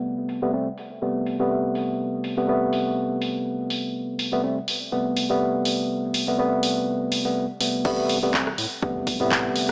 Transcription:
Already playing: tine electric piano C3 G3 A3 B3
0.29 open hi-hat
0.42 tine electric piano C3 G3 A3 B3
0.53 tine electric piano C3 G3 A3 C4
0.78 open hi-hat
1.02 tine electric piano C3 G3 A3 B3
1.26 open hi-hat
1.39 tine electric piano C3 G3 A3 B3
1.75 open hi-hat
2.24 open hi-hat
2.37 tine electric piano C3 G3 A3 B3
2.48 tine electric piano C3 G3 A3 B3
2.73 open hi-hat
3.22 open hi-hat
3.70 open hi-hat
4.19 open hi-hat
4.32 tine electric piano C3 G3 A3 B3
4.43 tine electric piano C3 G3 A3 C4
4.68 open hi-hat
4.92 tine electric piano C3 G3 A3 B3
5.17 open hi-hat
5.30 tine electric piano C3 G3 A3 B3
5.65 open hi-hat
6.14 open hi-hat
6.27 tine electric piano C3 G3 A3 B3
6.38 tine electric piano C3 G3 A3 B3
6.63 open hi-hat
7.12 open hi-hat
7.25 tine electric piano C3 G3 A3 B3
7.60 tine electric piano C3 G3 A3 B3, open hi-hat
7.85 analog synth bass A1, tine electric piano C3 G3 A3 B3, kick, crash
8.09 analog synth bass A1, open hi-hat
8.22 tine electric piano C3 G3 A3 B3
8.33 tine electric piano C3 A3 C4, kick, clap
8.47 analog synth bass A1, cross-stick
8.58 analog synth bass A2, open hi-hat
8.82 tine electric piano C3 G3 A3 B3, kick
8.96 analog synth bass E2
9.07 kick, open hi-hat
9.20 analog synth bass A2, tine electric piano C3 G3 A3 B3
9.31 kick, clap
9.56 analog synth bass G1, open hi-hat

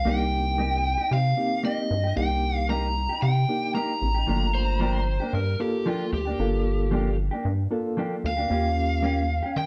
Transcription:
0.05 analog synth bass C2, clean electric guitar A#3 D#4 G4, reed electric piano A#3 D4 D#4 G4, lead electric guitar G5
0.58 clean electric guitar A#3 D#4 G4
0.98 clean electric guitar D#4 G4
1.11 analog synth bass C3, lead electric guitar F5
1.37 reed electric piano A#3 C4 D#4 G4
1.63 clean electric guitar A#3 D#4 G4, lead electric guitar D#5
1.91 analog synth bass G2
2.04 clean electric guitar D#4 G4
2.16 analog synth bass C2, reed electric piano A#3 D4 D#4 G4, lead electric guitar G5
2.69 clean electric guitar A#3 D#4 G4, lead electric guitar A#5
3.09 clean electric guitar D#4 G4
3.22 analog synth bass C3, lead electric guitar G5
3.49 reed electric piano A#3 D4 D#4 G4
3.74 clean electric guitar A#3 D#4 G4, lead electric guitar A#5
4.02 analog synth bass A1
4.14 clean electric guitar D#4 G4
4.27 analog synth bass G1, clean electric guitar F3 A#3 D4 G4, reed electric piano A3 A#3 D4 F4
4.55 electric slide guitar C5
4.80 clean electric guitar F3 A#3 D4 G4
5.20 clean electric guitar A#3 D4 G4
5.33 analog synth bass G2, electric slide guitar A#4
5.60 reed electric piano A#3 D4 F4 A4, electric slide guitar G4
5.86 clean electric guitar F3 A#3 D4 G4, electric slide guitar F4
6.13 analog synth bass D2, electric slide guitar G4
6.25 clean electric guitar A#3 D4 G4
6.39 analog synth bass G1, reed electric piano A#3 D4 F4 A4
6.91 clean electric guitar F3 A#3 D4 G4
7.31 clean electric guitar A#3 D4 G4
7.45 analog synth bass G2
7.71 reed electric piano A#3 D4 F4 A4
7.97 clean electric guitar F3 A#3 D4 G4
8.24 analog synth bass D2, lead electric guitar F5
8.37 clean electric guitar A#3 D4 G4
8.50 analog synth bass D#2, reed electric piano A#3 C#4 F4 G4, clean electric guitar A#3 C#4 G4
9.03 clean electric guitar A#3 C#4 G4
9.43 clean electric guitar C#4 G4
9.56 analog synth bass D#3, lead electric guitar G5

